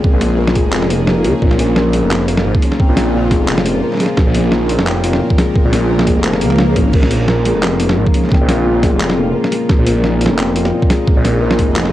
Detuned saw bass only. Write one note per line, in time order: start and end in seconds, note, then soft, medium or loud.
0.13 0.64 A#1 loud
0.65 1.26 F1 medium
1.25 1.33 C#2 loud
1.42 2.02 A#1 loud
2.03 2.44 F1 medium
2.45 2.54 G#1 loud
2.89 3.39 A#1 loud
3.40 3.82 F1 medium
4.27 4.77 A#1 loud
4.79 5.20 F1 medium
5.65 6.16 A#1 loud
6.17 6.44 F1 medium
6.42 6.78 C#2 medium
6.77 6.92 G#1 medium
6.94 7.54 A#1 loud
7.55 7.96 F1 medium
7.97 8.06 G#1 loud
8.41 8.92 A#1 loud
8.93 9.34 F1 medium
9.79 10.29 A#1 loud
10.31 10.72 F1 medium
11.17 11.67 A#1 loud
11.68 11.93 F1 medium